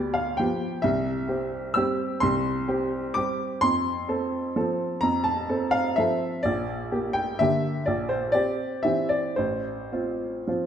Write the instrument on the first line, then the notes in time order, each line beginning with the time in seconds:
upright piano
Already playing: D2 B3 G4 D5
0.14 F5
0.37 F3 B3 G4 G5
0.82 C2 E5
1.28 C4 G4
1.74 G3 C4 G4 E6
2.20 C2 C6
2.68 C4 G4
3.14 G3 C4 G4 D6
3.61 F2 C6
4.08 C4 A4
4.56 F3 C4 A4
5.01 F2 A#5
5.24 A5
5.49 C4 A4
5.71 F5
5.96 F3 C4 A4 E5
6.43 A#1 D5
6.92 A#3 G4
7.13 G5
7.39 D3 A#3 G4 E5
7.86 A#1 D5
8.09 C5
8.32 C4 G4 D5
8.83 E3 C4 G4 E5
9.09 D5
9.36 A1 C5
9.92 C4 F4
10.47 F3 C4 F4